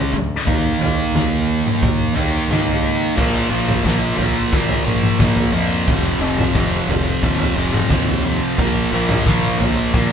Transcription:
Already playing: distorted electric guitar C#3 G#3 C#4
0.13 fingered electric bass D2, kick
0.45 fingered electric bass D#2, distorted electric guitar D#3 A#3 D#4, kick, floor tom
0.78 fingered electric bass D#2, floor tom
1.12 fingered electric bass D#2, snare, floor tom
1.66 mid tom
1.82 fingered electric bass D#2, kick, floor tom, mid tom
2.13 fingered electric bass D#2, distorted electric guitar A#3 D#4, floor tom
2.17 distorted electric guitar D#3
2.48 fingered electric bass C#2, distorted electric guitar D#3 A#3 D#4, snare, mid tom
2.68 floor tom
2.83 fingered electric bass C#2
3.16 fingered electric bass A#1, distorted electric guitar A#2 F3 A#3, kick, floor tom, crash
3.50 fingered electric bass A#1, distorted electric guitar A#2 F3 A#3
3.69 floor tom, mid tom
3.85 fingered electric bass A#1, distorted electric guitar A#2 F3 A#3, kick, snare
4.17 fingered electric bass A#1, distorted electric guitar A#2 F3 A#3, floor tom
4.52 fingered electric bass A#1, distorted electric guitar A#2 F3 A#3, kick
4.69 floor tom
4.85 fingered electric bass A#1, distorted electric guitar A#2 F3 A#3, mid tom
5.03 mid tom
5.19 fingered electric bass A#1, distorted electric guitar A#2 F3 A#3, kick, snare, mid tom
5.36 floor tom
5.53 fingered electric bass F2, distorted electric guitar A#2 F3 A#3
5.88 fingered electric bass F1, distorted electric guitar F2 C3 F3, kick, floor tom
6.19 fingered electric bass F1, distorted electric guitar F2 C3 F3
6.38 floor tom, mid tom
6.55 fingered electric bass F1, distorted electric guitar F2 C3 F3, kick
6.87 fingered electric bass F1, distorted electric guitar F2, floor tom
6.91 distorted electric guitar C3 F3
7.22 fingered electric bass D#2, distorted electric guitar F2 C3 F3, kick
7.39 floor tom
7.56 fingered electric bass F1, distorted electric guitar F2 C3 F3
7.73 mid tom
7.90 fingered electric bass D#2, distorted electric guitar F2 C3 F3, kick, snare, mid tom
8.07 floor tom
8.23 distorted electric guitar F2 C3 F3
8.58 fingered electric bass A#1, distorted electric guitar A#2 F3 A#3, kick, floor tom
8.91 fingered electric bass A#1, distorted electric guitar A#2 F3 A#3
9.09 floor tom, mid tom
9.26 fingered electric bass A#1, distorted electric guitar A#2 F3 A#3, kick, snare
9.58 fingered electric bass A#1, distorted electric guitar A#2 F3 A#3, floor tom
9.94 fingered electric bass A#1, distorted electric guitar A#2 F3 A#3, kick

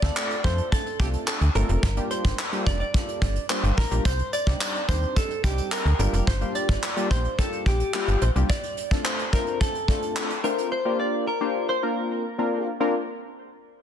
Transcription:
Already playing: clean electric guitar D5
0.02 fm bass D2, synth keys A3 C4 D4 F4 A4, kick, closed hi-hat
0.17 clap, closed hi-hat
0.31 closed hi-hat
0.44 fm bass F2, synth keys A3 C4 D4 F4 A4, clean electric guitar C5, kick, closed hi-hat
0.58 closed hi-hat
0.72 clean electric guitar A4, kick, closed hi-hat
0.86 closed hi-hat
0.99 fm bass C2, synth keys A3 C4 D4 F4 A4, clean electric guitar G4, kick, closed hi-hat
1.14 closed hi-hat
1.28 clean electric guitar A4, clap, closed hi-hat
1.41 fm bass D2, closed hi-hat
1.55 fm bass G1, synth keys A3 C4 D4 F4 A4, clean electric guitar A#4, closed hi-hat
1.69 fm bass F1, closed hi-hat
1.83 fm bass G1, kick, closed hi-hat
1.97 synth keys G3 A#3 D4 F4 G4, closed hi-hat
2.11 clean electric guitar C5, closed hi-hat
2.25 fm bass G1, kick, closed hi-hat
2.39 clap, closed hi-hat
2.52 synth keys G3 A#3 D4 F4 G4, closed hi-hat
2.66 fm bass F1, clean electric guitar D5, kick, closed hi-hat
2.80 clean electric guitar D5, closed hi-hat
2.94 synth keys G3 A#3 D4 F4 A4, kick, closed hi-hat
3.08 closed hi-hat
3.22 fm bass G1, kick, closed hi-hat
3.36 closed hi-hat
3.49 synth keys G3 A#3 D4 F4 G4, clean electric guitar C5, clap, closed hi-hat
3.63 fm bass G1, closed hi-hat
3.77 fm bass A1, clean electric guitar A#4, kick, open hi-hat
3.91 fm bass A#1, synth keys G3 A#3 D4 F4 G4, closed hi-hat
4.05 fm bass C2, clean electric guitar C5, kick, closed hi-hat, tambourine
4.19 closed hi-hat
4.33 clean electric guitar D5, closed hi-hat, tambourine
4.47 fm bass C2, synth keys G3 C4 D4 D#4 G4, kick, closed hi-hat
4.61 clap, closed hi-hat, tambourine
4.75 closed hi-hat
4.88 fm bass D#2, synth keys G3 C4 D4 D#4 G4, clean electric guitar C5, kick, closed hi-hat, tambourine
5.02 closed hi-hat
5.16 clean electric guitar A4, kick, closed hi-hat, tambourine
5.31 closed hi-hat
5.44 fm bass C2, synth keys G3 C4 D4 D#4 G4, clean electric guitar G4, kick, closed hi-hat, tambourine
5.58 closed hi-hat, tambourine
5.72 clean electric guitar A#4, clap, closed hi-hat, tambourine
5.85 fm bass D2, closed hi-hat
5.99 fm bass G1, synth keys G3 A#3 D4 F4 G4, clean electric guitar A#4, closed hi-hat, tambourine
6.13 fm bass F1, closed hi-hat, tambourine
6.27 fm bass G1, clean electric guitar C5, kick, closed hi-hat
6.41 synth keys G3 A#3 D4 F4 G4, closed hi-hat
6.55 clean electric guitar D5, closed hi-hat
6.69 fm bass G1, kick, closed hi-hat
6.83 clap, closed hi-hat
6.97 synth keys G3 A#3 D4 F4 G4, closed hi-hat
7.11 fm bass A#1, clean electric guitar C5, kick, closed hi-hat
7.25 closed hi-hat
7.38 synth keys G3 A#3 D4 F4 G4, clean electric guitar A4, kick, closed hi-hat
7.53 closed hi-hat
7.66 fm bass A#1, clean electric guitar G4, kick, closed hi-hat
7.80 closed hi-hat
7.94 synth keys G3 A#3 D4 F4 G4, clean electric guitar G4, clap, closed hi-hat
8.08 fm bass G1, closed hi-hat
8.22 fm bass A#1, clean electric guitar C5, closed hi-hat
8.36 fm bass C2, synth keys G3 A#3 D4 F4 G4, closed hi-hat
8.49 clean electric guitar D5, kick, closed hi-hat
8.63 closed hi-hat
8.77 closed hi-hat
8.91 synth keys A3 C4 D4 F4 A4, kick, closed hi-hat
9.05 clean electric guitar C5, clap, closed hi-hat
9.19 closed hi-hat
9.33 synth keys A3 C4 D4 F4 C5, clean electric guitar A#4, kick, closed hi-hat
9.47 closed hi-hat
9.61 clean electric guitar A4, kick, closed hi-hat
9.75 closed hi-hat
9.88 synth keys A3 C4 D4 F4 A4, kick, closed hi-hat
10.02 closed hi-hat
10.16 clap, closed hi-hat
10.30 closed hi-hat
10.44 synth keys A3 C4 D4 F4 C5, clean electric guitar A#4, closed hi-hat
10.58 closed hi-hat
10.72 clean electric guitar C5
10.85 synth keys A#3 D4 F4 G4 A#4
11.00 clean electric guitar D5
11.27 clean electric guitar A#4
11.41 synth keys A#3 D4 F4 G4 C5
11.69 clean electric guitar C5
11.83 synth keys A#3 C4 D4 F4 A#4, clean electric guitar A#4
12.38 synth keys A#3 C4 D4 F4 A#4
12.80 synth keys A#3 C4 D4 F4 A#4

